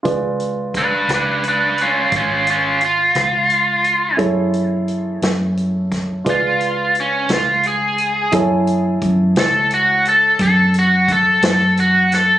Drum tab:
HH |xxxxxxxxxxxx|xxxxxxxxxxxx|xxxxxxxxxxxx|
SD |---r-----r--|---o-o---o--|---o-----o-o|
BD |o-o---o-----|o----oo-----|o-o---o-o---|